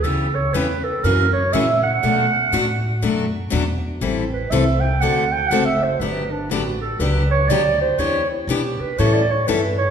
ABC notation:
X:1
M:4/4
L:1/8
Q:"Swing" 1/4=121
K:Bm
V:1 name="Clarinet"
A c B A ^A c e f- | f4 z4 | z B e g f g (3f e =c | B D F A B c d =c |
c E G B (3c d c B c |]
V:2 name="Steel-string acoustic guitar"
[C,E,B,CG] z [C,E,B,CG] z [C,E,^A,CF] z [C,E,A,CF] z | [B,,F,A,DF] z [B,,F,A,DF] z [B,,F,A,DF] z [B,,F,A,DF] z | [E,G,=CEA] z [E,G,CEA] z [D,A,CFA] z [D,A,CFA] z | [D,F,B,DG] z [D,F,B,DG] z [D,F,B,DG] z [D,F,B,DG] z |
[E,B,DG] z [E,B,DG] z [E,G,CEA] z [E,G,CEA] z |]
V:3 name="Upright bass" clef=bass
C,,2 E,,2 F,,2 ^A,,2 | B,,2 A,,2 F,,2 E,,2 | A,,,2 =C,,2 D,,2 F,,,2 | G,,,2 A,,,2 C,,2 D,,2 |
E,,2 B,, z A,,2 G,,2 |]